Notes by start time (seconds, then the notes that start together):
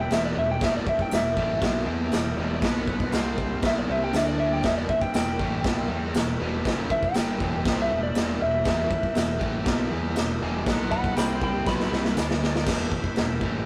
Already playing: E4 G4 B4
0.01 G5
0.11 E1 E2 B2 E3 E5, snare, tambourine, crash
0.25 D5
0.36 E1 E2 B2 E5
0.51 G5
0.60 E1 E2 B2 E3 E4 G4 D5, kick, snare, crash
0.64 E5
0.77 D5
0.87 E5, muted fingered electric bass stroke, muted distorted electric guitar stroke, kick
0.99 G5, kick
1.11 E1 E2 B2 E5, snare, tambourine, crash
1.37 A1 A2 E3 A3, kick
1.61 B1 B2 F#3 B3, kick, snare, crash
1.86 E2 E3 B3 E4
2.12 E1 E2 B2, snare, tambourine, crash
2.36 E1 E2 B2 E3
2.62 B1 B2 F#3 B3 F#4 B4, kick, snare, crash
2.88 kick
3.00 kick
3.11 C2 C3 G3 C4 G4 C5, snare, tambourine, crash
3.38 kick
3.62 B1 B2 F#3 B3 E4 G4 B4, kick, snare, crash
3.66 E5
3.79 D5
3.88 C2 C3 G3 C4 E5
4.04 G5
4.12 D2 D3 A3 D4 A4 D5 E5, snare, tambourine, crash
4.28 D5
4.40 E5
4.53 G5
4.63 E1 E2 B2 E3 G4 B4 E5, kick, snare, crash
4.78 D5
4.89 E5, muted fingered electric bass stroke, muted distorted electric guitar stroke, kick
5.01 G5, kick
5.14 E1 E2 B2 G5, snare, tambourine, crash
5.39 A1 A2 E3 A3, kick
5.64 B1 B2 F#3 B3, kick, snare, crash
5.88 E2 E3 B3 E4
6.14 E1 E2 B2, snare, tambourine, crash
6.39 E1 E2 B2 E3
6.65 F#1 F#2 C#3 F#3, kick, snare, crash
6.90 E5, muted fingered electric bass stroke, muted distorted electric guitar stroke, kick
7.03 G5, kick
7.14 G1 G2 D3 G3, snare, tambourine, crash
7.40 E1 E2 B2 E3, kick
7.65 C2 C3 G3 C4, kick, snare, crash
7.82 E5
7.90 E1 E2 B2
8.03 D5
8.15 E1 E2 B2 E3, snare, tambourine, crash
8.41 E1 E2 B2 E5
8.64 E1 E2 B2 E3 G4 B4 E5, kick, snare, crash
8.90 muted distorted electric guitar stroke, muted fingered electric bass stroke, kick
9.03 kick
9.15 E1 E2 B2, snare, tambourine, crash
9.39 A1 A2 E3 A3, kick
9.65 B1 B2 F#3 B3, kick, snare, crash
9.90 E2 E3 B3 E4
10.16 E1 E2 B2, snare, tambourine, crash
10.41 E1 E2 B2 E3
10.65 B1 B2 F#3 B3 F#4 B4 F#5, kick, snare, crash
10.91 F#5 B5, kick
11.04 kick
11.17 C2 C3 G3 C4 G4 C5 G5 B5, snare, tambourine, crash
11.42 G5 B5, kick
11.65 B1 B2 F#3 B3 G4 B4 E5 B5, kick, snare
11.80 snare
11.92 C2 C3 G3 C4, snare
12.05 snare
12.17 D2 D3 A3 D4 A4 D5, snare, tambourine
12.31 snare
12.44 snare
12.56 snare
12.65 E1 E2 B2 E3 G4 B4 E5, kick, snare, crash
12.91 muted fingered electric bass stroke, muted distorted electric guitar stroke, kick
13.04 kick
13.16 E1 E2 B2, snare, crash
13.41 A1 A2 E3 A3, kick